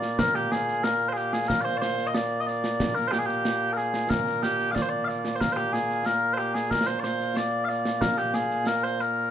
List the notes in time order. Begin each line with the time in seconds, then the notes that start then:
Already playing: A#2 A#3 D5
0.02 snare
0.19 A#4, concert bass drum, snare
0.35 G4, snare
0.51 G#4, snare
0.68 snare
0.83 A#4, snare
1.09 C5
1.13 G#4, snare
1.17 G4
1.33 G#4, snare
1.48 A#4, concert bass drum, snare
1.61 C5 D5
1.66 snare
1.77 D5
1.81 C5, snare
1.98 snare
2.07 D#5
2.14 D5, snare
2.40 D#5
2.47 D5, snare
2.64 snare
2.80 concert bass drum, snare
2.95 A#4, snare
3.08 G4 C5
3.13 snare
3.19 G#4
3.26 G4, snare
3.45 snare
3.73 A#4
3.77 G#4, snare
3.94 snare
4.09 A#4, concert bass drum, snare
4.27 snare
4.43 G4, snare
4.60 snare
4.71 D5 F5
4.76 concert bass drum, snare
4.82 C5
4.89 D5
5.05 D5 F5
5.09 snare
5.25 snare
5.36 C5
5.41 A#4, concert bass drum, snare
5.53 G4 C5
5.58 snare
5.73 G#4, snare
5.90 snare
6.06 A#4, snare
6.34 C5
6.38 G4, snare
6.54 G#4, snare
6.70 A#4, concert bass drum, snare
6.87 C5
7.00 D5
7.04 C5, snare
7.20 snare
7.37 D5, snare
7.65 F5
7.69 D5, snare
7.85 snare
8.01 A#4, concert bass drum, snare
8.18 G4, snare
8.34 G#4, snare
8.51 snare
8.67 A#4, snare
8.83 C5, snare
9.00 A#4, snare